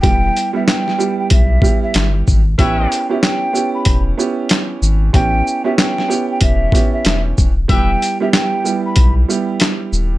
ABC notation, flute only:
X:1
M:4/4
L:1/16
Q:"Swing 16ths" 1/4=94
K:Edor
V:1 name="Flute"
g3 e g3 g e3 e2 z3 | g3 e g3 b2 z6 z | g3 e g3 g e3 e2 z3 | g3 e g3 b2 z6 z |]